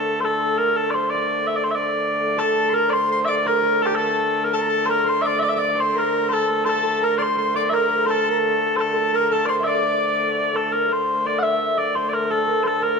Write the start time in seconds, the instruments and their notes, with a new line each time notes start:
Already playing: hurdy-gurdy D3 A3, bagpipes A4, harp A4 C5 D5
0.20 harp A4, bagpipes C5
0.25 bagpipes A4
0.58 bagpipes A#4, harp A#4
0.76 bagpipes A4
0.90 harp C5, bagpipes C5 D5
1.10 bagpipes D5
1.14 harp D5
1.47 bagpipes E5
1.56 bagpipes D5
1.64 bagpipes C5
1.71 bagpipes E5
1.75 bagpipes D5
2.19 hurdy-gurdy D3 A3
2.37 harp A4, bagpipes A4, shawm A5
2.70 harp A#4, shawm A#5 C6
2.74 bagpipes A#4
2.88 harp C5, bagpipes D5
2.93 bagpipes C5, shawm C6
3.12 shawm C6
3.25 harp D5, bagpipes D5 E5, shawm D6
3.46 harp A#4, bagpipes A#4, shawm A#5
3.62 harp A#4
3.82 harp A4, bagpipes A4, shawm A5
3.86 bagpipes G4
3.93 harp A4, bagpipes A4
3.97 shawm A5
4.44 bagpipes A#4
4.52 harp A4, bagpipes A4, shawm A5
4.61 shawm A#5
4.69 shawm A5
4.86 harp A#4, bagpipes C5, shawm A#5
4.90 bagpipes A#4
5.04 harp C5, shawm C6
5.09 bagpipes C5
5.22 harp D5, bagpipes E5, shawm D6
5.26 bagpipes D5
5.39 harp D5, bagpipes D5 E5, shawm D6
5.49 bagpipes E5
5.56 harp D5, bagpipes D5, shawm D6
5.74 harp C5, shawm D6
5.79 bagpipes C5, shawm C6
5.94 harp A#4, shawm A#5
5.98 bagpipes A#4
6.29 harp A4, bagpipes C5, shawm A5
6.33 bagpipes A4
6.48 hurdy-gurdy D3 A3
6.65 harp A4, bagpipes C5, shawm A5
6.69 bagpipes A4
6.83 harp A4
7.01 harp A#4, bagpipes A#4, shawm A#5
7.18 harp C5, bagpipes D5, shawm C6
7.22 bagpipes C5
7.36 harp C5, shawm C6
7.54 harp D5, bagpipes D5, shawm D6
7.70 harp A#4, bagpipes E5, shawm A#5
7.74 bagpipes A#4
7.89 harp A#4
8.06 harp A4, bagpipes C5, shawm A5
8.10 bagpipes A4
8.28 harp A#4, shawm A#5
8.76 harp A4, bagpipes C5, shawm A5
8.80 bagpipes A4
8.95 harp A4
9.13 harp A#4, bagpipes A#4, shawm A#5
9.31 harp A4, bagpipes A4, shawm A5
9.46 harp C5, bagpipes D5, shawm C6
9.50 bagpipes C5
9.60 harp E5
9.64 harp D5, bagpipes D5 E5, shawm D6
10.53 harp A4, bagpipes A4
10.72 hurdy-gurdy D3 A3, harp A#4, bagpipes A#4
10.89 harp C5, bagpipes C5
11.25 harp D5, bagpipes D5
11.39 harp E5, bagpipes F#5
11.43 bagpipes E5
11.77 harp D5, bagpipes D5
11.95 bagpipes C5, harp C5
12.09 bagpipes D5
12.13 bagpipes A#4
12.30 harp A4, bagpipes A4
12.47 harp A#4
12.63 harp A4, bagpipes A4 C5
12.81 harp A#4, bagpipes A#4